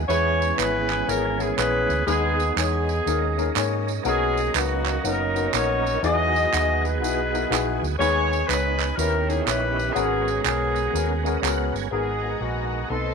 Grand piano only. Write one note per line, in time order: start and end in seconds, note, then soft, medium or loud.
0.08 0.86 E3 medium
0.08 0.40 B3 medium
0.08 0.40 C#4 medium
0.08 0.40 E4 medium
0.08 0.40 G#4 medium
0.08 0.41 B4 loud
0.57 0.89 B3 medium
0.57 0.90 C#4 medium
0.57 0.90 E4 medium
0.57 0.90 G#4 medium
0.57 0.90 C#5 medium
1.07 1.23 B3 medium
1.07 1.23 C#4 medium
1.07 1.24 E4 medium
1.07 1.24 G#4 medium
1.07 1.24 A#4 medium
1.39 1.48 B3 medium
1.39 1.48 C#4 medium
1.39 1.49 E4 medium
1.39 1.49 G#4 medium
1.39 1.49 A#4 medium
1.57 1.89 B3 medium
1.57 1.89 C#4 medium
1.57 1.89 E4 medium
1.57 1.89 G#4 medium
1.57 1.90 B4 medium
2.07 2.84 D#3 medium
2.07 2.38 G#3 loud
2.07 2.39 B3 medium
2.07 2.39 D#4 medium
2.07 2.39 G#4 medium
2.07 2.39 B4 loud
2.56 2.88 G#3 medium
2.56 2.88 B3 medium
2.56 2.88 D#4 medium
2.56 2.89 G#4 medium
2.56 2.89 C#5 medium
3.06 3.83 D#3 medium
3.06 3.22 A#3 medium
3.06 3.22 C#4 medium
3.06 3.22 D#4 medium
3.06 3.22 G#4 medium
3.06 3.23 A#4 medium
3.37 3.47 A#3 medium
3.37 3.47 C#4 medium
3.37 3.47 D#4 medium
3.37 3.47 G#4 medium
3.37 3.47 A#4 medium
3.55 3.87 A#3 medium
3.55 3.87 C#4 medium
3.55 3.87 D#4 medium
3.55 3.88 G#4 medium
3.55 3.88 C#5 loud
4.04 4.82 B2 medium
4.04 4.36 B3 medium
4.04 4.36 C#4 medium
4.04 4.37 D#4 medium
4.04 4.37 F#4 medium
4.04 4.37 A#4 loud
4.54 4.86 B3 medium
4.54 4.86 C#4 medium
4.54 4.86 D#4 medium
4.54 4.87 F#4 medium
4.54 4.87 B4 medium
5.04 5.19 B3 medium
5.04 5.20 C#4 medium
5.04 5.20 D#4 medium
5.04 5.20 F#4 medium
5.04 5.20 A#4 medium
5.35 5.44 B3 medium
5.35 5.44 C#4 medium
5.35 5.44 D#4 medium
5.35 5.45 F#4 medium
5.35 5.45 A#4 medium
5.53 5.84 B3 medium
5.53 5.85 C#4 medium
5.53 5.85 D#4 medium
5.53 5.85 F#4 medium
5.53 5.85 A#4 medium
6.03 6.80 E3 medium
6.03 6.34 B3 loud
6.03 6.34 D#4 medium
6.03 6.34 E4 medium
6.03 6.35 F#4 medium
6.03 6.35 G#4 loud
6.52 6.83 B3 medium
6.52 6.84 D#4 medium
6.52 6.84 E4 medium
6.52 6.84 F#4 medium
6.52 6.84 G#4 medium
7.01 7.17 B3 medium
7.01 7.17 D#4 medium
7.01 7.17 E4 medium
7.01 7.17 F#4 medium
7.01 7.18 G#4 medium
7.33 7.42 B3 medium
7.33 7.42 D#4 medium
7.33 7.42 E4 medium
7.33 7.42 F#4 medium
7.33 7.43 A#4 medium
7.50 7.82 B3 medium
7.50 7.82 D#4 medium
7.50 7.82 E4 medium
7.50 7.82 F#4 medium
7.50 7.83 G#4 loud
7.99 8.76 D#3 medium
7.99 8.30 G#3 loud
7.99 8.31 B3 medium
7.99 8.31 D#4 medium
7.99 8.31 G#4 medium
7.99 8.31 B4 loud
8.49 8.80 G#3 medium
8.49 8.80 B3 medium
8.49 8.80 D#4 medium
8.49 8.80 G#4 medium
8.49 8.81 C#5 medium
8.98 9.74 D#3 medium
8.98 9.13 C#4 medium
8.98 9.13 D#4 medium
8.98 9.14 E4 medium
8.98 9.14 G4 medium
8.98 9.14 B4 medium
9.29 9.38 C#4 medium
9.29 9.38 D#4 medium
9.29 9.38 E4 medium
9.29 9.38 G4 medium
9.29 9.39 A#4 medium
9.46 9.77 C#4 medium
9.46 9.78 D#4 medium
9.46 9.78 E4 medium
9.46 9.78 G4 medium
9.46 9.78 C#5 medium
9.95 10.72 G#2 medium
9.95 10.26 B3 loud
9.95 10.27 C#4 medium
9.95 10.27 F#4 medium
9.95 10.27 G#4 medium
9.95 10.27 A#4 loud
10.44 10.76 B3 medium
10.44 10.76 C#4 medium
10.44 10.76 F#4 medium
10.44 10.77 G#4 medium
10.44 10.77 A#4 medium
10.93 11.09 B3 medium
10.93 11.09 C#4 medium
10.93 11.10 F#4 medium
10.93 11.10 G#4 medium
10.93 11.10 A#4 medium
11.25 11.34 B3 medium
11.25 11.34 C#4 medium
11.25 11.34 F#4 medium
11.25 11.34 G#4 medium
11.25 11.35 A#4 medium
11.42 11.74 B3 medium
11.42 11.74 C#4 medium
11.42 11.74 F#4 medium
11.42 11.74 G#4 medium
11.42 11.75 A#4 loud
11.91 12.68 G#2 medium
11.91 12.07 B3 medium
11.91 12.07 F#4 medium
11.91 12.08 G#4 medium
11.91 12.08 A#4 medium
12.22 12.32 B3 medium
12.22 12.32 F#4 medium
12.22 12.32 G#4 medium
12.22 12.33 A#4 medium
12.41 12.72 B3 medium
12.41 12.72 F#4 medium
12.41 12.72 G#4 medium
12.41 12.73 A#4 medium
12.90 13.14 B2 medium
12.90 13.14 C4 medium
12.90 13.14 D#4 medium
12.90 13.14 A4 medium
12.90 13.14 B4 medium